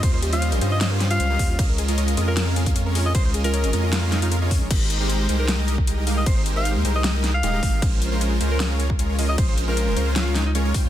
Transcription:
<<
  \new Staff \with { instrumentName = "Alto saxophone" } { \time 4/4 \key aes \major \tempo 4 = 154 c''16 c''16 r16 f''8 r8 ees''16 ees''16 r8 f''4~ f''16 | r4. r16 bes'8 r4. ees''16 | c''16 c''16 r16 bes'4 r16 f'8 ees'16 ees'16 r4 | r4. r16 bes'8 r4. ees''16 |
c''16 c''16 r16 f''8 r8 ees''16 ees''16 r8 f''4~ f''16 | r4. r16 bes'8 r4. ees''16 | c''16 c''16 r16 bes'4 r16 f'8 ees'16 ees'16 r4 | }
  \new Staff \with { instrumentName = "Synth arpeggio sound" } { \time 4/4 \key aes \major c''16 bes'16 g'16 f'16 c''16 bes'16 g'16 f'16 c''16 bes'16 g'16 f'16 c''16 bes'16 g'16 f'16 | des''16 bes'16 aes'16 f'16 des''16 bes'16 aes'16 f'16 des''16 bes'16 aes'16 f'16 des''16 bes'16 aes'16 f'16 | des''16 bes'16 aes'16 f'16 des''16 bes'16 aes'16 f'16 des''16 bes'16 des''16 f'16 bes'16 ees''16 des''16 aes'16 | r1 |
r1 | r1 | r1 | }
  \new Staff \with { instrumentName = "Supersaw synth" } { \time 4/4 \key aes \major <g des' f' c'' ees''>8. <g des' f' c'' ees''>8. <g des' f' c'' ees''>8 <g des' f' c'' f''>8. <g des' f' c'' f''>8 <g des' f' c'' ees''>8. | <aes des' f' bes' ees''>8. <aes des' f' bes' ees''>8. <aes des' f' bes' ees''>8 <aes des' f' bes' f''>8. <aes des' f' bes' f''>8 <aes des' f' bes' des''>8. | <aes des' f' bes' ees''>8. <aes des' f' bes' ees''>8. <aes des' f' bes' ees''>8 <aes des' f' bes' f''>8. <aes des' f' bes' f''>8 <aes des' f' bes' des''>8. | <aes ees' g' bes' c''>8. <aes ees' g' bes' c''>8. <aes ees' g' bes' c''>8 <aes ees' g' bes' ees''>8. r16 <aes ees' g' bes' ees''>16 <aes ees' g' bes' ees''>16 <aes ees' g' bes' f''>8 |
<aes ees' g' bes' c''>8. <aes ees' g' bes' c''>8. <aes ees' g' bes' c''>8 <aes ees' g' bes' ees''>8. r16 <aes ees' g' bes' ees''>16 <aes ees' g' bes' ees''>16 <aes ees' g' bes' f''>8 | <aes des' f' bes' c''>8. <aes des' f' bes' c''>8. <aes des' f' bes' c''>8 <aes des' f' bes' des''>8. r16 <aes des' f' bes' des''>16 <aes des' f' bes' des''>16 <aes des' f' bes' ees''>8 | <aes des' f' bes' c''>8. <aes des' f' bes' c''>8. <aes des' f' bes' c''>8 <aes des' f' bes' des''>8. r16 <aes des' f' bes' des''>16 <aes des' f' bes' des''>16 <g des' f' c'' g''>8 | }
  \new Staff \with { instrumentName = "Sub bass" } { \clef bass \time 4/4 \key aes \major ees,4~ ees,16 bes,,16 g,4. des,8 ees,8 | des,4. f,2~ f,8 | des,4~ des,16 aes,,16 f,2~ f,16 bes,,16 | aes,,4. c,2~ c,8 |
aes,,4~ aes,,16 ees,16 c,4. ees,,8 aes,,8 | bes,,4. des,2~ des,8 | bes,,4~ bes,,16 f,,16 des,2 r16 ees,16 | }
  \new DrumStaff \with { instrumentName = "Drums" } \drummode { \time 4/4 <cymc hh bd>8 hh16 hh16 hh16 hh16 hh8 <cymc hh sn>8 <hh sn>16 hh16 hh8 <hho bd>8 | <cymc hh bd>8 hh16 hh16 hh16 hh16 hh8 <cymc hh sn>8 hh16 <hh bd>16 hh8 hho8 | <cymc hh bd>8 hh16 hh16 hh16 hh16 hh8 <cymc hh sn>8 <hh sn>16 hh16 hh8 <hho bd>8 | <cymc hh bd>8 hh8 hh8 hh8 <hh sn>8 hh16 bd16 hh8 hho8 |
<cymc hh bd>8 hh8 hh8 hh8 <hh sn>8 <hh sn>8 hh8 <hho bd>8 | <cymc hh bd>8 hh8 hh8 hh8 <hh sn>8 hh16 bd16 hh8 hho8 | <cymc hh bd>8 hh8 hh8 hh8 <hh sn>8 <hh sn>8 hh8 <hho bd>8 | }
>>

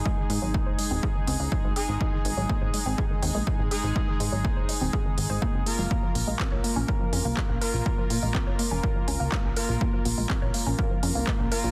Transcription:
<<
  \new Staff \with { instrumentName = "Analog polysynth" } { \time 4/4 \key bes \minor \tempo 4 = 123 <aes ees' aes'>2.~ <aes ees' aes'>8 <aes ees' aes'>8~ | <aes ees' aes'>2.~ <aes ees' aes'>8 <aes ees' aes'>8~ | <aes ees' aes'>2.~ <aes ees' aes'>8 <bes f' bes'>8~ | <bes f' bes'>2.~ <bes f' bes'>8 <bes f' bes'>8~ |
<bes f' bes'>2.~ <bes f' bes'>8 <bes f' bes'>8~ | <bes f' bes'>2.~ <bes f' bes'>8 <bes f' bes'>8 | }
  \new Staff \with { instrumentName = "Synth pluck" } { \time 4/4 \key bes \minor aes16 ees16 aes16 ges16 bes16 c''16 aes16 c'16 aes'16 ees16 c'16 aes16 ges16 aes16 aes'16 ees'16 | aes16 ees16 aes16 ges16 bes16 c''16 aes16 c'16 aes'16 ees16 c'16 aes16 ges16 aes16 aes'16 ees'16 | aes16 ees16 aes16 ges16 bes16 c''16 aes16 c'16 aes'16 ees16 ees16 c''16 bes16 c'16 aes'16 aes16 | bes16 f16 bes16 aes16 c'16 des''16 bes16 des'16 bes'16 f16 des'16 bes16 aes16 bes16 bes'16 f'16 |
bes16 f16 bes16 aes16 c'16 des''16 bes16 des'16 bes'16 f16 des'16 bes16 aes16 bes16 bes'16 f'16 | bes16 f16 bes16 aes16 c'16 des''16 bes16 des'16 bes'16 f16 des'16 bes16 aes16 bes16 bes'16 f'16 | }
  \new Staff \with { instrumentName = "Analog synth bass" } { \clef bass \time 4/4 \key bes \minor r8 aes,16 aes,,8 ees,,16 r16 ees,,16 r8 des,16 des,16 r16 aes,,16 r16 aes,,16 | r8 aes,,16 aes,,16 r16 aes,,16 r16 aes,,16 r8 ees,16 bes,,16 r16 aes,,16 r16 aes,,16 | r8 aes,16 aes,,8 ees,,16 r16 ees,,16 r8 aes,,16 aes,,16 r16 ges,,16 r16 ges,,16 | r8 bes,,16 bes,,16 r16 bes,,16 r16 bes,,16 r8 f,16 c,16 r16 bes,,16 r16 bes,,16 |
r8 bes,16 bes,,8 f,,16 r16 f,,16 r8 des,16 des,16 r16 bes,,16 r16 bes,,16 | r8 bes,,16 bes,,16 r16 bes,,16 r16 bes,,16 r8 f,16 c,16 r16 bes,,16 r16 bes,,16 | }
  \new DrumStaff \with { instrumentName = "Drums" } \drummode { \time 4/4 bd8 hho8 bd8 hho8 bd8 hho8 bd8 hho8 | bd8 hho8 bd8 hho8 bd8 hho8 bd8 hho8 | bd8 hho8 bd8 hho8 bd8 hho8 bd8 hho8 | bd8 hho8 <hc bd>8 hho8 bd8 hho8 <hc bd>8 hho8 |
bd8 hho8 <hc bd>8 hho8 bd8 hho8 <hc bd>8 hho8 | bd8 hho8 <hc bd>8 hho8 bd8 hho8 <hc bd>8 hho8 | }
>>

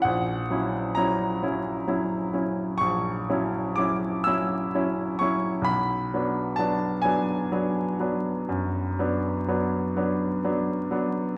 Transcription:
<<
  \new Staff \with { instrumentName = "Grand piano" } { \time 12/8 \key b \dorian \tempo 4. = 42 fis''4 ais''2 cis'''4 d'''8 e'''4 cis'''8 | b''4 a''8 gis''1~ gis''8 | }
  \new Staff \with { instrumentName = "Grand piano" } { \time 12/8 \key b \dorian ais,,8 <fis cis' e'>8 <fis cis' e'>8 <fis cis' e'>8 <fis cis' e'>8 <fis cis' e'>8 ais,,8 <fis cis' e'>8 <fis cis' e'>8 <fis cis' e'>8 <fis cis' e'>8 <fis cis' e'>8 | b,,8 <fis b d'>8 <fis b d'>8 <fis b d'>8 <fis b d'>8 <fis b d'>8 fis,8 <fis b d'>8 <fis b d'>8 <fis b d'>8 <fis b d'>8 <fis b d'>8 | }
>>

